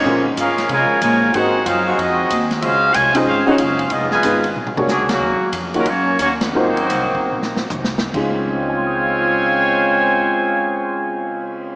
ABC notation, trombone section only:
X:1
M:4/4
L:1/8
Q:"Swing" 1/4=186
K:Db
V:1 name="Trombone section" clef=bass
[F,A,D] z [A,DF]2 [D,F,A,]2 [D,F,A,]2 | [CEG]2 [G,CF]2 [CEG]3 z | [A,DF]2 [C,F,A,] E [A,CF] G [A,DF]2 | [A,_CE] [_C,E,A,]3 z2 [A,,=D,A,] [B,,^C,^F,]- |
[B,,^C,^F,]2 z [D,G,B,] [G,B,D]2 [G,B,D] [E,G,=C]- | [E,G,C]6 z2 | [D,A,CF]8- | [D,A,CF]8 |]